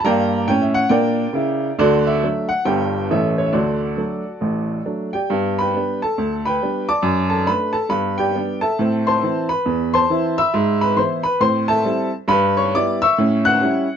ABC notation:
X:1
M:4/4
L:1/16
Q:"Swing" 1/4=137
K:D
V:1 name="Upright piano"
[dg_b]4 g e f2 [_Bdg]8 | [FAd]2 e4 f2 [Bdg]4 [Ace]2 c e | [FAd]12 z2 [Gdg]2- | [K:G] [Gdg]2 [Bgb]4 [Aa]4 [Bgb]4 [dad']2- |
[dad']2 [Aa]2 [Bb]2 [Aa]2 [Bb]2 [Gdg]4 [Aea]2- | [Aea]2 [cac']4 [Bb]4 [cac']4 [ebe']2- | [ebe']2 [Bb]2 [cc']2 [Bb]2 [cc']2 [Aea]4 z2 | [K:Edor] [Bb]2 [cc']2 [dd']2 [ec'e']4 [ff']6 |]
V:2 name="Upright piano"
[G,,_B,]4 [A,,C]4 [_B,,D]4 [C,E]4 | [D,,D,]4 [F,A,D]4 [G,,,G,,G,B,D]4 [A,,,A,,E,A,C]4 | [D,,D,]4 [F,A,D]4 [A,,,A,,]4 [F,A,D]4 | [K:G] [G,,B,]4 [G,B,D]4 D,,4 [G,B,D]4 |
F,,4 [A,D]4 [G,,B,]4 [G,B,D]4 | [A,,C]4 [E,CE]4 E,,4 [E,CE]4 | ^G,,4 [E,B,E]4 [A,,C]4 [=G,CE]4 | [K:Edor] G,,4 [G,B,E]4 [A,,C]4 [G,CE]4 |]